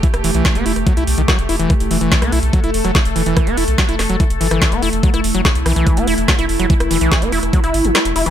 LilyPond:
<<
  \new Staff \with { instrumentName = "Ambient pad" } { \time 4/4 \key e \minor \tempo 4 = 144 <a g'>1 | a'1~ | a'1 | e'1~ |
e'1 | }
  \new Staff \with { instrumentName = "Acid bass" } { \clef bass \time 4/4 \key e \minor e16 r16 e16 e8 b16 e'16 r16 fis16 e'16 r16 dis16 fis16 r16 e'16 e16 | e16 r16 e16 e8 b16 e'16 r16 fis16 e'16 r16 fis16 e16 r16 e16 e16~ | e16 b16 e'16 r16 fis16 e'16 r16 fis16 e16 r16 e16 e8 b16 e'16 r16 | fis16 e'16 r16 fis16 e16 r16 e16 e8 b16 e'16 r16 fis16 e'16 r16 fis16 |
e16 r16 e16 e8 b16 e'16 r16 fis16 e'8 e16 g16 r16 e'16 e16 | }
  \new Staff \with { instrumentName = "Analog synth bass" } { \clef bass \time 4/4 \key e \minor r16 e,,16 e,,16 b,,16 r16 e,,16 e,,16 e,,16 r16 b,,16 b,,16 b,,16 r16 e,,16 e,,16 e,,16 | r16 e,,16 e,,16 e,,16 r16 b,,16 b,,16 b,,16 r16 e,,16 e,,16 e,,16 r16 e,,16 e,,16 e,,16 | r16 e,,16 e,,16 b,,16 r16 e,,16 e,,16 e,,16 r16 e,,16 g,,16 g,,16 r16 e,,16 e,,16 e,,16 | r16 e,,16 e,,16 e,,16 r16 b,,16 b,,16 b,,16 r16 e,,16 e,,16 e,,16 r16 e,,16 e,,16 e,,16 |
r16 e,,16 e,,16 b,,16 r16 e,,16 e,,16 e,,16 r16 e,,16 g,,16 g,,16 r16 e,,16 e,,16 e,,16 | }
  \new DrumStaff \with { instrumentName = "Drums" } \drummode { \time 4/4 <hh bd>16 <hh ss>16 hho16 hh16 <hh bd sn>16 hh16 hho16 <hh ss>16 <hh bd>16 hh16 hho16 hh16 <hh bd ss sn>16 hh16 hho16 hh16 | <hh bd ss>16 hh16 hho16 hh16 <hh bd sn>16 <hh ss>16 hho16 hh16 <hh bd>16 hh16 hho16 <hh ss>16 <hh bd sn>16 hh16 hho16 hh16 | <hh bd ss>16 hh16 hho16 hh16 <hh bd sn>16 hh16 <hho ss sn>16 hh16 <hh bd>16 hh16 hho16 <hh ss>16 <hh bd sn>16 hh16 hho16 hh16 | <hh bd>16 <hh ss>16 hho16 hh16 <hh bd sn>16 hh16 <hho ss>16 hh16 <hh bd>16 hh16 hho16 hh16 <hh bd ss sn>16 hh16 hho16 hh16 |
<hh bd>16 <hh ss>16 hho16 hh16 <hh bd sn>16 hh16 hho16 <hh ss>16 <hh bd>16 hh16 hho16 hh16 <hh ss sn>16 hh16 hho16 hh16 | }
>>